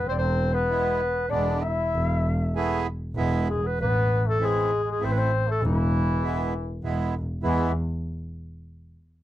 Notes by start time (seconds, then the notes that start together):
0.07 E1 C4 C5
0.11 D5
0.18 C4 C5
0.54 B3 B4
0.69 G#3 B3 E4
1.30 E1 G#3 B3 D4 D5
1.61 E4 E5
1.94 E1
2.55 A3 B3 E4 G#4
3.15 E1 G#3 B3 E4
3.47 G#3 G#4
3.63 B3 B4
3.78 A1 B3 B4
4.26 A3 A4
4.39 E3 G#3 C4 E4
4.45 G#4
4.85 G#3
4.92 G#4
5.00 A1 A3 C4 E4
5.05 C5
5.11 C4 B4
5.18 C5
5.47 A3 A4
5.62 E1 E3 E4
6.22 G#3 B3 E4
6.83 E1 G#3 B3 E4
7.43 E2 E3 G#3 B3 E4